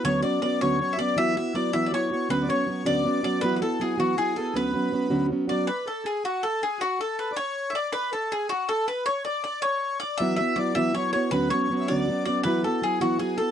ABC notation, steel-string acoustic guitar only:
X:1
M:6/8
L:1/8
Q:3/8=106
K:Bdor
V:1 name="Steel-string acoustic guitar"
[D,,D,F,B,CF] [F,B,CF] [F,B,CF] [D,,D,F,B,CF] [F,B,CF] [F,B,CF] | [E,F,B,EF] [B,EF] [F,B,EF] [E,F,B,EF] [F,B,EF] [B,EF] | [D,,D,F,B,CF] [F,B,CF] [F,B,CF] [D,,D,F,B,CF] [F,B,CF] [F,B,CF] | [E,F,B,EF] [B,EF] [F,B,EF] [E,F,B,EF] [F,B,EF] [B,EF] |
[D,,D,F,B,CF] [F,B,CF] [F,B,CF] [D,,D,F,B,CF] [F,B,CF] [F,B,CF] | z6 | z6 | z6 |
z6 | [E,F,B,EF] [B,EF] [F,B,EF] [E,F,B,EF] [F,B,EF] [B,EF] | [D,,D,F,B,CF] [F,B,CF] [F,B,CF] [D,,D,F,B,CF] [F,B,CF] [F,B,CF] | [E,F,B,EF] [B,EF] [F,B,EF] [E,F,B,EF] [F,B,EF] [B,EF] |]